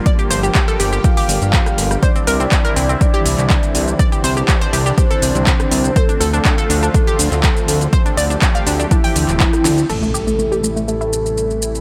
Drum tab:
CC |----------------|----------------|----------------|----------------|
HH |xxoxxxoxxooxxxox|xxoxxxoxxxoxxxox|xxoxxxoxxxoxxxox|xxoxxxoxxxoxxxox|
SH |xxxxxxxxxxxxxxxx|xxxxxxxxxxxxxxxx|xxxxxxxxxxxxxxxx|xxxxxxxxxxxxxxxx|
CP |----x-------x---|----x------xx---|----x-------x---|----x------xx---|
SD |-------------r-r|----------------|-------------r--|----------------|
BD |o---o---o---o---|o---o---o---o---|o---o---o---o---|o---o---o---o---|

CC |----------------|x---------------|
HH |xxoxxxoxxooxxxox|----------------|
SH |xxxxxxxxxxxxxxxx|xxxxxxxxxxxxxxxx|
CP |----x------xx---|----------------|
SD |-------------ro-|----------------|
BD |o---o---o---o---|----------------|